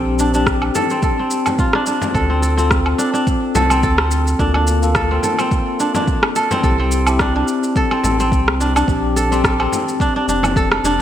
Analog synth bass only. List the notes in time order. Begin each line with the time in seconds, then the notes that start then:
Already playing: A#1
2.14 D2
3.55 C2
3.83 D2
4.39 D2
6.63 C2
8.04 A1
8.32 C2
8.88 A#1
10.28 F1
10.84 F1